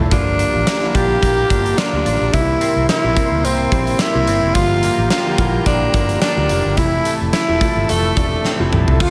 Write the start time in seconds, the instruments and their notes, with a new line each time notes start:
Already playing: grand piano C3 F3 A3 E4 G4 E5, clean electric guitar E3 A3 C4
0.11 fingered electric bass G1, grand piano D3 G3 A#3 E4, clean electric guitar F3, tenor saxophone D4, analog synth pad G4 F5 A#5, kick, closed hi-hat
0.19 grand piano F4
0.39 clean electric guitar D4, closed hi-hat
0.55 fingered electric bass A1
0.67 clean electric guitar A#3, snare, closed hi-hat
0.82 grand piano D3 G3 A#3 E4
0.95 fingered electric bass A#1, grand piano D3 G3 A#3 F4, clean electric guitar D4, tenor saxophone G4, kick, closed hi-hat
1.23 fingered electric bass A#1, clean electric guitar A#3, kick, closed hi-hat
1.50 fingered electric bass G1, grand piano D3 G3 A#3 F4, clean electric guitar D4, kick, closed hi-hat
1.66 closed hi-hat
1.78 tenor saxophone D4, clean electric guitar F4, snare, closed hi-hat
1.93 fingered electric bass D2, grand piano D3 G3 A#3 F4
2.06 fingered electric bass A1, clean electric guitar D4, closed hi-hat
2.21 fingered electric bass A#1
2.33 fingered electric bass C2, grand piano C3 G3 A#3 D#4, clean electric guitar E3, tenor saxophone E4, analog synth pad A#4 E5 C6, kick, closed hi-hat
2.41 grand piano E4
2.61 clean electric guitar C4, closed hi-hat
2.76 fingered electric bass C2
2.89 clean electric guitar A#3, tenor saxophone E4, snare, closed hi-hat
3.04 fingered electric bass A#1, grand piano C3 G3 A#3 E4
3.16 grand piano C3 G3 A#3 C4, clean electric guitar C4, kick, closed hi-hat
3.32 fingered electric bass D2
3.44 fingered electric bass C2, clean electric guitar A#3, tenor saxophone C4, closed hi-hat
3.71 fingered electric bass A#1, grand piano C3 G3 A#3 E4, clean electric guitar C4, kick, closed hi-hat
3.87 closed hi-hat
3.99 tenor saxophone E4, clean electric guitar G4, snare, closed hi-hat
4.14 fingered electric bass C2, grand piano C3 G3 A#3 E4
4.27 fingered electric bass G1, clean electric guitar C4, closed hi-hat
4.43 fingered electric bass F1
4.54 fingered electric bass G1, grand piano D3 G3 A#3 F4, clean electric guitar F3, tenor saxophone F4, analog synth pad G4 G5 A#5, kick, closed hi-hat
4.83 clean electric guitar A#3, closed hi-hat
4.98 fingered electric bass A1
5.10 clean electric guitar F3, tenor saxophone F4, snare, closed hi-hat
5.25 grand piano D3 G3 A#3 F4
5.38 fingered electric bass A#1, grand piano D3 G3 A#3 E4, clean electric guitar A#3, kick, closed hi-hat
5.66 fingered electric bass A#1, clean electric guitar F3, tenor saxophone D4, kick, closed hi-hat
5.94 fingered electric bass G1, grand piano D3 G3 A#3 F4, clean electric guitar A#3, kick, closed hi-hat
6.09 closed hi-hat
6.21 tenor saxophone D4, clean electric guitar D4, snare, closed hi-hat
6.37 fingered electric bass D2, grand piano D3 G3 A#3 F4
6.49 fingered electric bass F1, clean electric guitar A#3, closed hi-hat
6.66 fingered electric bass G1
6.77 fingered electric bass F1, grand piano C3 E3 A3 E4, clean electric guitar E3, tenor saxophone E4, analog synth pad A4 E5 A5, kick, closed hi-hat
7.05 clean electric guitar A3, closed hi-hat
7.21 fingered electric bass F1
7.33 clean electric guitar E3, tenor saxophone E4, snare, closed hi-hat
7.48 fingered electric bass E1, grand piano C3 F3 A3 E4
7.61 grand piano C3 F3 A3 F4, clean electric guitar A3, kick, closed hi-hat
7.76 fingered electric bass G1
7.89 fingered electric bass F1, clean electric guitar E3, tenor saxophone A3, closed hi-hat
8.16 fingered electric bass E1, grand piano C3 F3 A3 D4, clean electric guitar A3, kick, closed hi-hat
8.45 clean electric guitar C4, snare
8.59 fingered electric bass F1, grand piano C3 F3 A3 E4
8.72 fingered electric bass A#1, clean electric guitar A3, mid tom
8.88 fingered electric bass C2, floor tom
8.99 fingered electric bass D2, analog synth pad F3 C5 A5, clean electric guitar F3, grand piano A3 C4 F4, tenor saxophone F4, kick, crash